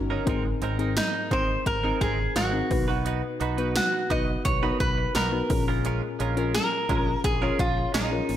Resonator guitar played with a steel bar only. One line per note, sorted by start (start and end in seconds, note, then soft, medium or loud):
0.97 1.33 D#4 medium
1.33 1.66 C5 medium
1.67 2.03 A#4 medium
2.01 2.34 G#4 medium
2.36 2.85 F#4 medium
3.77 4.12 F#4 medium
4.11 4.44 D#5 medium
4.45 4.80 C#5 loud
4.80 5.15 B4 medium
5.16 5.64 A#4 medium
6.55 7.24 A#4 loud
7.24 7.60 G#4 medium
7.60 7.94 F4 medium
7.94 8.37 D#4 medium